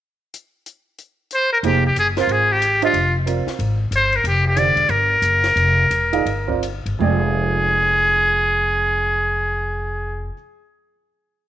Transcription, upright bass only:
1.63 1.94 F1 medium
1.95 2.26 F#1 medium
2.27 2.90 G#1 medium
2.93 3.43 F1 medium
3.46 muted upright bass stroke soft
3.59 3.89 G#1 medium
3.91 4.22 G1 medium
4.24 4.73 F1 medium
4.76 4.88 E1 medium
4.89 5.20 G1 medium
5.22 5.54 F#1 medium
5.56 5.88 F1 medium
5.91 6.24 E1 medium
6.25 6.82 G1 medium
6.86 7.00 G1 medium
7.00 10.28 F1 medium

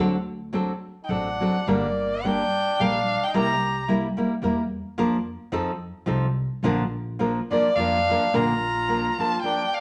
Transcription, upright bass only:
0.00 0.70 D2 medium
1.09 1.46 A1 medium
1.67 2.40 G1 medium
2.79 3.15 A#1 medium
3.34 4.05 C2 medium
4.43 4.78 E2 medium
4.98 5.34 F2 medium
5.52 5.88 F2 medium
6.07 6.44 C2 medium
6.63 7.37 A#1 medium
7.76 8.13 F2 medium
8.34 9.06 A#1 medium

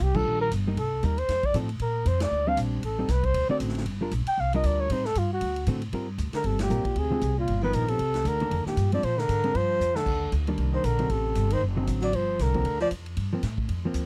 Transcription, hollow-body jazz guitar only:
0.15 0.49 D#3 medium
0.15 0.49 G3 medium
0.15 0.50 D4 medium
0.15 0.50 F4 medium
0.67 0.77 G3 medium
0.67 0.77 A#3 medium
0.67 0.77 D#4 medium
1.04 1.17 G3 medium
1.04 1.17 A#3 medium
1.04 1.17 D#4 medium
1.55 1.68 F3 medium
1.55 1.68 C4 medium
1.55 1.68 D#4 medium
1.55 1.69 A4 medium
2.47 2.81 G3 medium
2.47 2.82 C4 medium
2.47 2.82 D4 medium
2.99 3.08 G3 medium
2.99 3.08 C4 medium
2.99 3.09 D#4 medium
3.49 3.84 D3 medium
3.49 3.84 A3 medium
3.49 3.84 C4 medium
3.49 3.85 F#4 medium
4.01 4.11 G3 medium
4.01 4.11 D4 medium
4.01 4.11 F4 medium
4.01 4.12 A#4 medium
4.54 4.88 G3 medium
4.54 4.88 D4 medium
4.54 4.88 F4 medium
4.54 4.89 A#4 medium
4.91 5.04 G3 medium
4.91 5.04 C4 medium
4.91 5.04 D#4 medium
5.68 5.81 D3 medium
5.68 5.81 A3 medium
5.68 5.81 C4 medium
5.68 5.81 F#4 medium
5.93 6.06 G3 medium
5.93 6.07 C4 medium
5.93 6.07 F4 medium
5.93 6.07 A#4 medium
6.70 6.84 G3 medium
6.70 6.84 C4 medium
6.70 6.84 F4 medium
6.70 6.84 A#4 medium
7.11 7.21 D3 medium
7.11 7.21 G#3 medium
7.11 7.21 C4 medium
7.11 7.21 F4 medium
7.63 7.98 F3 medium
7.63 7.98 B3 medium
7.63 7.98 D#4 medium
8.41 8.76 D#3 medium
8.41 8.76 A#3 medium
8.41 8.76 D4 medium
8.93 9.02 G#3 medium
8.93 9.03 C4 medium
8.93 9.03 D4 medium
9.44 9.54 G#3 medium
9.44 9.54 C4 medium
9.44 9.54 D4 medium
10.48 10.82 D#3 medium
10.48 10.83 G3 medium
10.48 10.83 A#3 medium
10.48 10.83 D4 medium
10.99 11.09 D3 medium
10.99 11.09 F#3 medium
10.99 11.09 C4 medium
10.99 11.09 D#4 medium
11.76 12.11 D3 medium
11.76 12.11 F#3 medium
11.76 12.12 C4 medium
11.76 12.11 D#4 medium
12.55 12.64 F3 medium
12.55 12.65 A#3 medium
12.55 12.65 C4 medium
13.33 13.42 F3 medium
13.33 13.42 A#3 medium
13.33 13.43 C4 medium
13.85 14.06 F3 medium
13.85 14.06 A#3 medium
13.85 14.06 C4 medium

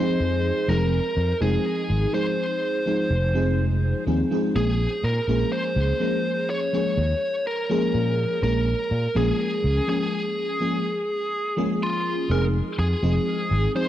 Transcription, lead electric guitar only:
0.00 0.72 C5 medium
0.69 1.41 A#4 loud
1.42 2.14 G#4 medium
2.14 4.04 C5 medium
4.56 5.06 G#4 loud
5.04 5.52 A#4 loud
5.52 6.50 C5 loud
6.50 7.47 C#5 loud
7.47 8.42 A#4 loud
8.43 9.18 A#4 loud
9.17 9.88 G#4 loud
9.89 11.88 G#4 loud
11.83 12.32 F4 medium
12.31 12.44 A#4 loud
12.79 13.71 G#4 medium
13.76 13.88 C5 loud

